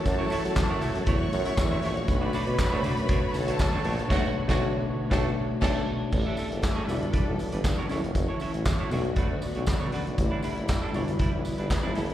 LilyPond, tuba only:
\new Staff \with { instrumentName = "Tuba" } { \clef bass \time 4/4 \key b \minor \tempo 4 = 118 fis,8 r16 fis16 r16 fis,16 r16 fis,16 e,8 fis,8 e,8 ais,,8 | b,,8 r16 b,16 r16 d,16 r16 fis,8 r16 b,,8 r8 ais,,8 | b,,8 r16 b,,8 r8. b,,8 r8 b,,8 r8 | a,,16 r8 fis,,16 r8 g,,8 r16 b,,16 r16 g,,16 g,16 r16 fis,,16 eis,,16 |
fis,,16 r8 a,,16 r8 b,,8 r16 d,16 r16 b,,16 r16 b,16 r16 b,,16 | a,,16 r8 fis,,16 r8 g,,8 r16 b,,16 r16 g,,16 r16 g,,16 fis,,8 | }